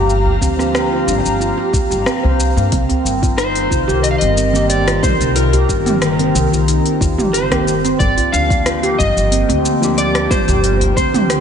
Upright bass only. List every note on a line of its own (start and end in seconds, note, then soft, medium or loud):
0.00 0.36 G1 loud
0.42 1.02 D2 medium
1.07 1.21 G1 loud
1.25 1.51 G1 medium
1.91 2.03 G1 medium
2.24 2.50 C2 medium
2.57 2.69 G2 medium
2.72 2.86 C2 loud
3.05 3.66 G1 medium
3.71 3.85 C2 medium
3.89 4.14 C2 medium
4.22 4.98 G1 loud
5.03 5.17 C2 medium
5.20 5.64 C2 loud
5.69 6.30 G1 medium
6.35 6.49 C2 medium
6.52 6.78 C2 medium
7.01 7.15 D#2 loud
7.19 7.95 G1 medium
8.00 8.14 G1 loud
8.33 8.94 D2 medium
8.99 9.13 G1 loud
9.16 9.42 G1 medium
9.49 10.25 D2 loud
10.31 10.44 G1 medium
10.48 10.91 G1 loud
10.97 11.40 D2 medium